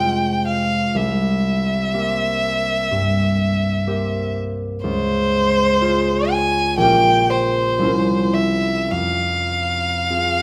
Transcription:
Already playing: F2 C3 G#3 F4 G5
0.00 C5
0.48 F5
0.95 C2 E5
1.94 A#3 G4 C5
2.91 G2
3.87 A#3 G4 C5
4.84 C#2 C5
5.81 F4 G#4
6.31 G#5
6.77 A#1 C#4 G4 G5
6.81 A#4
7.30 C5
7.79 C2 C#4 E4
7.83 A#4
8.34 E5
8.91 F2 F5
10.09 C4 F4 G#4

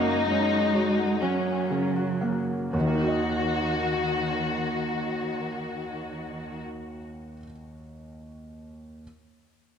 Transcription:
Already playing: F#2 A#3 D#4 F#4 A#4 C#5 F#5
0.30 G#3 C#4 C#5
0.53 F#4
0.75 F#4 C#5
0.98 F#5
1.21 F#3 C#4 F#4
1.70 C#3 A#4
1.96 F#4
2.21 A#3 F#5
2.72 D#2 D#3 F#4
2.80 D#3
2.87 A#3
2.95 D#4
3.01 F#4
3.08 D#5

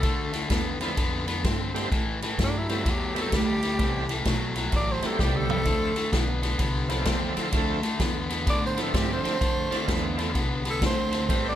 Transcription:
Already playing: A4
0.03 D2 D3 A3, kick, snare, ride
0.33 D3 A3, snare, ride
0.50 E2 D3 B3, kick, snare, ride
0.81 D3 F3 A3 B3 C4 D4 E4, snare, ride
0.97 F2 D3 B3, kick, snare, ride
1.27 D3 B3, snare, ride
1.44 G2 D3 C4, kick, snare, ride
1.74 D3 G3 A3 B3 C4 G4, snare, ride
1.92 A2 E3, kick, snare, ride
2.22 A2 E3, snare, ride
2.39 G2 A2 F#3, kick, snare, ride
2.44 D4
2.58 E4
2.69 A2 F#3 G3 A3 B3 C4 E4, snare, ride
2.85 E2 A2 F#3 G4, kick, snare, ride
3.14 A2 F#3 G3 A3 B3 C4 E4, snare, ride
3.21 A4
3.32 D2 A2 G3, kick, snare, ride
3.37 G4
3.63 A2 G3, snare, ride
3.78 C2 A2 E3 G3 A3 B3 C4 E4, kick, snare, ride
4.09 A2 E3, snare, ride
4.25 B1 A2 F#3, kick, snare, ride
4.56 A2 F#3, snare, ride
4.72 A1 A2 F#3 D5, kick, snare, ride
4.92 C5
5.02 A2 F#3 G3 A3 B3 C4 G4, muted upright bass stroke, snare, ride
5.06 A4
5.19 C2 A2 G3 G4, kick, snare
5.35 A4, mid tom
5.50 A2 G3, floor tom
5.64 D2 D3 F3 A3 C4 D4 E4, kick, snare, ride
5.96 D3 A3, snare, ride
6.12 B1 D3 B3, kick, snare, ride
6.42 D3 B3, snare, ride
6.58 C2 D3 B3, kick, snare, ride
6.88 D3 F3 A3 B3 C4 D4 E4, snare, ride
7.05 E2 D3 C4, kick, snare, ride
7.36 D3 C4, muted upright bass stroke, snare, ride
7.52 D2 D3 F3 A3 C4 D4 E4, kick, snare, ride
7.83 D3 A3, snare, ride
8.00 E2 D3 B3, kick, snare, ride
8.29 D3 B3, snare, ride
8.47 A2 D3 B3 D5, kick, snare, ride
8.66 C5
8.77 D3 F3 A3 B3 C4 D4 E4, snare, ride
8.82 A4
8.94 G2 D3 C4 G4, kick, snare, ride
9.13 C5
9.24 D3 C4, muted upright bass stroke, snare, ride
9.41 F2 D3 A3, kick, snare, ride
9.71 D3 A3 C4 D4 E4 F4, muted upright bass stroke, snare, ride
9.88 E2 D3 B3, kick, snare, ride
10.18 D3 B3, snare, ride
10.35 C2 D3 B3, kick, snare, ride
10.65 D3 B3, snare, ride
10.70 A4
10.82 D2 D3 C4, kick, snare, ride
10.86 C5
11.11 D3 C4, snare, ride
11.29 A1 A2 E3 G3 A3 B3 C4 E4, kick, snare, ride
11.49 D5

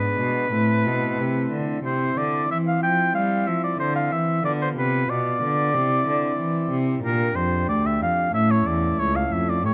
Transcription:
Already playing: G#2 G#3 B3 D4 B4
0.19 B2
0.48 A3 C4 E4
0.52 A2
0.85 B2
1.19 C3
1.52 D3
1.82 C3 C4 E4 C5
2.18 D3 D5
2.50 E3 E5
2.67 F5
2.82 F3 G5
3.15 G3 F5
3.47 F3 E5
3.64 D5
3.79 D3 C5
3.96 F5
4.12 E3 E5
4.42 D3 B3 F4 D5
4.62 C5
4.77 C3 B4
5.10 B2 D5
5.42 D3
5.72 C3 C4 E4
6.07 D3
6.39 E3
6.71 C3
7.01 A#2 D4 G4 A#4
7.36 F2 C5
7.68 D2 D5
7.86 E5
8.01 F2 F5
8.29 A3 C#4 E4
8.34 A2 E5
8.51 C#5
8.66 E2 D5
8.99 C#2 C#5
9.16 F5
9.31 F2 E5
9.49 D5
9.60 A3 E4 G4
9.64 A2 C#5

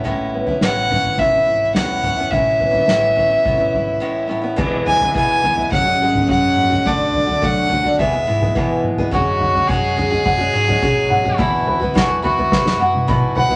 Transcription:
Already playing: A1 A2 C#4
0.04 A2 G#3 B3 C#4 E4, floor tom
0.34 B3
0.47 B3 C#4 E4, floor tom
0.61 A1 A2 E3 G#3 B3 C#4 E4 F#5, snare
0.90 G#3 B3 C#4 E4, floor tom, mid tom
1.04 floor tom
1.17 G#1 A2 G#3 B3 C#4 E5, kick, floor tom
1.22 E4
1.33 B3 C#4 E4
1.45 G#1 E4
1.74 E2 A2 G#3 B3 C#4 E4 F#5, snare, floor tom
2.02 A2 G#3 B3 C#4, floor tom, mid tom
2.06 E4
2.17 B3 C#4 E4
2.31 A1 A2 G#3 B3 C#4 E4 E5, kick, floor tom
2.60 B3, floor tom
2.73 B3 E4, floor tom
2.78 C#4
2.87 A1 A2 E3 G#3 B3 C#4 E4, snare
3.15 G#3 B3 C#4 E4, floor tom
3.30 B3 C#4 E4
3.44 G#1 A2 G#3 B3 C#4 E4, kick, floor tom
3.58 B3 C#4 E4
3.73 G#1 E4, floor tom
4.00 A2 G#3 B3 C#4 E4
4.27 A2 G#3 B3 C#4 E4
4.42 B3 C#4 E4
4.56 E1 E2 B2 E3 G#3 B3 E4 G#4, kick, floor tom, crash
4.86 E4 G#5, floor tom
5.00 G#3 B3 E4, floor tom
5.04 E3
5.14 E1 E2 B2 E3 G#3 B3 E4 G#5, kick
5.43 E2 E3 G#3 B3 E4, floor tom
5.57 E3 G#3 B3 E4, floor tom
5.70 F#1 F#2 F#3 G#3 C#4 F#4 F#5, kick, floor tom
5.75 G#4
5.85 G#3 C#4 F#4
6.00 G#1 F#3 G#3 C#4 G#4
6.04 F#4
6.15 floor tom, mid tom
6.27 F#2 F#3 G#3 C#4 F#4 F#5, kick
6.58 mid tom
6.69 C#4 F#4, floor tom, mid tom
6.73 G#3
6.85 D2 D3 A3 D4 F#4 A4 D5, kick, floor tom
7.14 F#4, floor tom
7.27 D4 F#4, floor tom
7.31 A3
7.41 D2 D3 F#3 A3 D4 F#4 F#5, kick
7.69 D3 A3 D4 F#4, floor tom
7.84 A3 D4 F#4, floor tom
7.98 E2 B2 E3 G#3 B3 G#4 E5, kick, floor tom
8.12 E3 G#3 B3 G#4
8.26 G#2 E3 G#3 B3 E4 G#4
8.42 E3 G#3 B3 G#4, floor tom, mid tom
8.55 E2 B2 E3 G#3 B3 G#4, kick
8.84 mid tom
8.97 G#3 B3 G#4, floor tom, mid tom
9.01 E3
9.11 F#2 F#3 G#3 C#4 F#4 G#4, kick, floor tom
9.40 F#5, floor tom
9.54 G#3 C#4 F#4, floor tom
9.68 F#2 F#3 G#3 C#4 F#4 G#4 G#5, kick
9.96 F#3 G#3 C#4 F#4 G#4, floor tom
10.11 G#3 C#4 F#4, floor tom
10.26 F#2 F#5, kick, floor tom
10.38 C#4 F#4
10.42 G#3
10.53 G#2 F#3 G#3 C#4 F#4
10.68 G#3 C#4 F#4, floor tom, mid tom
10.81 B1 F#3 G#3 C#4 F#4 G#4, kick
11.10 F#5, mid tom
11.24 G#3 C#4 F#4, floor tom, mid tom
11.38 E2 B2 E3 B3 E4 F#4 B5, kick, floor tom
11.68 B4, floor tom
11.80 B3 E4 F#4, floor tom
11.84 E3
11.94 E2 B2 E3 B3 E4 F#4 F#5, kick, snare
12.22 E3 B3 E4 F#4 B5, floor tom
12.37 E3 B3 E4 F#4, floor tom
12.52 E2 B4, kick, snare
12.64 E3 B3 E4 F#4, snare
12.78 F#2 E3 B3 E4 F#4 F#5
12.95 high tom
13.07 B1 E2 B2 E3 B3 E4 F#4 B5, kick, mid tom
13.36 B4 F#5, floor tom
13.49 E3 B3 E4 F#4, floor tom

